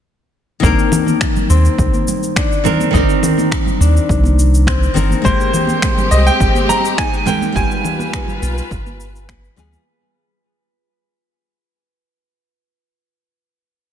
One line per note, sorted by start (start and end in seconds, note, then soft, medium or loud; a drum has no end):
0.60 0.72 C2 loud
0.60 2.60 D#3 medium
0.60 3.85 A#3 medium
0.60 2.61 C4 medium
0.60 2.62 D4 medium
0.60 kick loud
0.64 2.63 A#4 medium
0.64 shaker soft
0.79 shaker soft
0.92 low conga medium
0.92 shaker medium
1.07 high conga medium
1.07 shaker soft
1.21 finger snap loud
1.21 kick medium
1.21 shaker soft
1.36 low conga medium
1.36 shaker soft
1.50 1.68 D#2 loud
1.50 4.50 C4 medium
1.50 high conga medium
1.50 shaker medium
1.65 shaker soft
1.78 1.88 C2 loud
1.78 kick loud
1.78 shaker soft
1.94 high conga medium
1.94 shaker soft
2.08 low conga medium
2.08 shaker medium
2.23 shaker soft
2.36 3.00 D4 medium
2.36 finger snap loud
2.36 kick medium
2.36 high conga medium
2.36 shaker soft
2.52 shaker soft
2.64 2.89 D#3 medium
2.64 2.90 C4 medium
2.64 2.91 D4 medium
2.64 2.91 A#4 medium
2.64 low conga medium
2.64 shaker medium
2.80 high conga medium
2.80 shaker soft
2.91 3.03 C2 medium
2.91 4.91 D#3 medium
2.91 4.92 C4 medium
2.91 3.86 D#4 medium
2.91 4.93 D5 medium
2.91 kick loud
2.95 4.94 A#4 medium
2.95 shaker soft
3.10 shaker soft
3.23 low conga medium
3.23 shaker medium
3.38 high conga medium
3.38 shaker soft
3.52 finger snap loud
3.52 kick loud
3.52 shaker soft
3.66 low conga medium
3.66 shaker soft
3.80 3.99 D#2 loud
3.80 6.60 D4 medium
3.80 shaker medium
3.97 shaker soft
4.09 4.88 C2 loud
4.09 kick loud
4.09 shaker soft
4.24 high conga medium
4.24 shaker soft
4.39 shaker medium
4.54 shaker soft
4.67 6.11 C4 medium
4.67 finger snap loud
4.67 kick loud
4.67 high conga medium
4.67 shaker soft
4.83 shaker soft
4.94 5.14 G1 medium
4.94 5.20 D#3 medium
4.94 5.21 C4 medium
4.94 5.21 D4 medium
4.94 5.22 A#4 medium
4.94 low conga medium
4.94 shaker medium
5.11 high conga medium
5.11 shaker soft
5.22 5.34 G#1 medium
5.22 7.22 G#3 medium
5.22 7.53 G#3 medium
5.22 8.46 A#3 medium
5.22 7.23 C4 medium
5.22 7.53 C4 medium
5.22 7.53 G4 medium
5.22 6.14 C5 medium
5.22 kick loud
5.26 7.24 G4 medium
5.26 7.25 A#4 medium
5.26 shaker soft
5.41 shaker soft
5.54 low conga medium
5.54 shaker medium
5.67 high conga medium
5.67 shaker soft
5.82 finger snap loud
5.82 kick medium
5.82 shaker soft
5.98 low conga medium
5.98 shaker soft
6.11 6.30 C2 loud
6.11 9.11 C4 medium
6.11 6.27 D#5 medium
6.11 shaker medium
6.27 6.71 G5 loud
6.27 shaker soft
6.40 6.50 G#1 loud
6.40 kick loud
6.40 shaker soft
6.55 high conga medium
6.55 shaker soft
6.69 6.96 A#5 loud
6.69 low conga medium
6.69 shaker medium
6.85 shaker soft
6.98 9.68 D#4 medium
6.98 7.28 G#5 loud
6.98 finger snap loud
6.98 kick loud
6.98 high conga medium
6.98 shaker soft
7.14 shaker soft
7.26 7.52 G#3 medium
7.26 7.52 C4 medium
7.26 7.53 G4 medium
7.26 7.53 A#4 loud
7.26 7.54 G5 medium
7.26 low conga medium
7.26 shaker medium
7.41 high conga loud
7.41 shaker soft
7.52 7.65 G1 loud
7.52 9.53 G3 medium
7.52 9.54 B3 medium
7.52 9.84 F4 medium
7.52 9.55 F4 medium
7.52 9.91 G4 medium
7.52 9.84 B4 medium
7.52 9.25 G#5 medium
7.52 kick loud
7.52 shaker soft
7.71 shaker soft
7.85 low conga medium
7.85 shaker medium
7.99 high conga loud
7.99 shaker soft
8.13 finger snap loud
8.13 kick medium
8.13 shaker soft
8.28 low conga medium
8.28 shaker soft
8.42 8.60 B1 loud
8.42 10.94 F4 medium
8.42 high conga medium
8.42 shaker medium
8.58 shaker soft
8.71 9.49 G1 loud
8.71 kick loud
8.71 shaker soft
8.86 high conga medium
8.86 shaker soft
9.00 shaker medium
9.16 shaker soft
9.29 9.57 B4 medium
9.29 finger snap loud
9.29 kick loud
9.29 high conga medium
9.29 shaker soft
9.44 shaker soft
9.56 9.76 D2 medium
9.56 9.82 G3 medium
9.56 9.83 B3 medium
9.56 9.83 F4 medium
9.56 9.84 G#4 loud
9.56 11.62 B4 medium
9.56 low conga medium
9.56 shaker medium
9.72 high conga medium
9.72 shaker soft